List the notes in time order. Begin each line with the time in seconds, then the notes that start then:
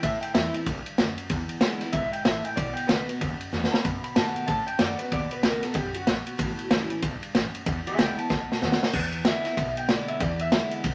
0.03 A2 E5, kick, ride
0.21 G5, muted upright bass stroke, ride
0.34 E2 E3 G3 C4 E4 E5, snare, ride
0.54 C4 E4, ride
0.66 C2 G2, kick, ride
0.86 muted upright bass stroke, ride
0.98 D2 F#2, snare, ride
1.18 muted upright bass stroke, ride
1.29 E2, kick, ride
1.49 muted upright bass stroke, ride
1.61 C#2 D3 G#3 B3 E4, snare, ride
1.81 B3 E4, muted upright bass stroke, snare, ride
1.93 B1 G#2 E5, kick, ride
2.13 G5, muted upright bass stroke, ride
2.25 A1 A2 E5, snare, ride
2.45 G5, ride
2.56 B1 B2 D5, kick, ride
2.74 G5, muted upright bass stroke, ride
2.87 C#2 D#3 A3 B3 F#4 B4, snare, ride
3.07 B3 F#4, muted upright bass stroke, ride
3.21 D#2 F#2, kick, ride
3.41 muted upright bass stroke, ride
3.52 E2 D#3 A3 B3 F#4, snare
3.64 snare
3.72 B3 F#4 B5, muted upright bass stroke, snare
3.84 F#2 B2, kick, ride
4.04 B5, muted upright bass stroke, ride
4.15 G#2 D#3 A3 B3 F#4 A5, snare, ride
4.36 G5, ride
4.47 F#2 A2 A5, kick, ride
4.67 G5, muted upright bass stroke, ride
4.79 F#2 D#3 A3 B3 F#4 D5, snare, ride
4.99 B3 F#4 B4, ride
5.12 D#2 B2 D5, kick, ride
5.31 B4, ride
5.43 C#2 D#3 A3 B3 F#4 A#4, snare, ride
5.63 B3 F#4 A4, muted upright bass stroke, snare, ride
5.74 B1 F#2 G4, kick, ride
5.94 F#4, muted upright bass stroke, ride
6.07 A#1 B2, snare, ride
6.27 ride
6.38 A1 A2, kick, ride
6.59 muted upright bass stroke, ride
6.70 C#2 E3 G3 C#4 E4, snare, ride
6.90 C#4 E4, ride
7.02 B1 G2, kick, ride
7.22 muted upright bass stroke, ride
7.35 A1 F#2, snare, ride
7.55 muted upright bass stroke, ride
7.66 E2, kick, ride
7.87 G#4 E5, muted upright bass stroke, ride
7.97 C#2 D3 G#3 B3 E4 E5 G5, snare, ride
8.17 B3 E4 A5, muted upright bass stroke, ride
8.29 B1 B2, kick, snare
8.52 snare
8.60 D#2 D#3 A3 B3 F#4, snare
8.72 snare
8.80 B3 F#4, muted upright bass stroke, snare
8.93 E2, kick, crash
9.12 ride
9.25 D3 G#3 B3 E4 E5, snare, ride
9.45 B3 E4, muted upright bass stroke, snare, ride
9.57 B1 B2, kick, ride
9.77 G5, ride
9.89 D3 G#3 B3 E4 D5, snare, ride
10.08 E5, muted upright bass stroke, ride
10.20 E2 D5, kick, ride
10.39 E5, ride
10.52 D3 G#3 B3 E4, snare, ride
10.71 muted upright bass stroke, ride
10.84 B1 B2, kick, ride